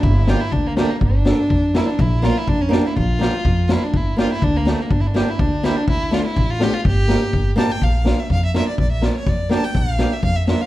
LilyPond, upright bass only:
\new Staff \with { instrumentName = "Upright bass" } { \clef bass \time 2/4 \tempo 4 = 124 g,,4 d,4 | g,,4 f,4 | bes,,4 f,4 | bes,,4 f,4 |
g,,4 d,4 | g,,4 d,4 | d,4 a,,4 | g,,4 g,,8 a,,8 |
bes,,4 f,4 | bes,,4 f,4 | bes,,4 f,4 | }